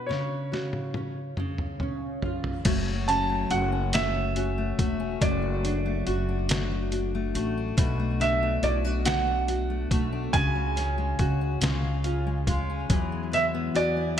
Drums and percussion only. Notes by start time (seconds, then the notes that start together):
0.11 snare
0.54 snare
0.73 high tom
0.94 high tom
1.37 mid tom
1.58 mid tom
1.80 mid tom
2.22 floor tom
2.44 floor tom
2.65 kick, closed hi-hat, crash
3.09 snare, closed hi-hat
3.51 closed hi-hat
3.93 snare, closed hi-hat
4.36 closed hi-hat
4.79 kick, closed hi-hat
5.22 kick, closed hi-hat
5.65 closed hi-hat
6.07 closed hi-hat
6.49 snare, closed hi-hat
6.92 closed hi-hat
7.35 closed hi-hat
7.78 kick, closed hi-hat
8.21 snare, closed hi-hat
8.63 closed hi-hat
9.05 snare, closed hi-hat
9.48 closed hi-hat
9.91 kick, closed hi-hat
10.34 kick, closed hi-hat
10.77 snare, closed hi-hat
11.19 kick, closed hi-hat
11.62 snare, closed hi-hat
12.04 closed hi-hat
12.47 kick, closed hi-hat
12.90 kick, closed hi-hat
13.33 snare, closed hi-hat
13.75 closed hi-hat